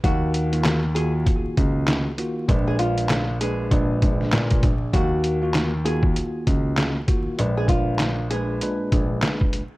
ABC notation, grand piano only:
X:1
M:4/4
L:1/16
Q:"Swing 16ths" 1/4=98
K:Ebm
V:1 name="Grand piano" clef=bass
E,,8 z2 D,,3 z3 | B,,,8 B,,,2 B,,,2 B,,2 B,,,2 | E,,8 z2 D,,3 z3 | B,,,8 z2 B,,,2 z4 |]